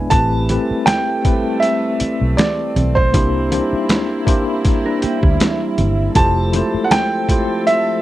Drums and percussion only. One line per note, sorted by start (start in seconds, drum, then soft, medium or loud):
0.11 kick loud
0.11 closed hi-hat medium
0.11 muted conga medium
0.49 closed hi-hat medium
0.49 muted conga soft
0.87 snare loud
0.87 closed hi-hat medium
0.87 high conga medium
1.25 kick loud
1.25 closed hi-hat medium
1.62 snare soft
1.62 closed hi-hat medium
2.00 closed hi-hat medium
2.00 muted conga soft
2.38 snare loud
2.38 closed hi-hat medium
2.38 high conga medium
2.76 closed hi-hat medium
2.76 high conga medium
2.97 kick medium
3.14 kick loud
3.14 closed hi-hat medium
3.14 muted conga soft
3.52 closed hi-hat medium
3.52 muted conga medium
3.89 snare loud
3.89 closed hi-hat medium
3.89 high conga medium
4.27 kick loud
4.27 closed hi-hat medium
4.65 kick medium
4.65 snare soft
4.65 closed hi-hat medium
5.02 closed hi-hat medium
5.23 kick medium
5.40 snare loud
5.40 closed hi-hat medium
5.40 high conga medium
5.78 closed hi-hat medium
5.78 high conga medium
6.15 kick loud
6.15 closed hi-hat medium
6.15 muted conga medium
6.53 closed hi-hat medium
6.53 muted conga soft
6.91 snare loud
6.91 closed hi-hat medium
6.91 high conga medium
7.29 kick medium
7.29 closed hi-hat medium
7.67 snare soft
7.67 closed hi-hat medium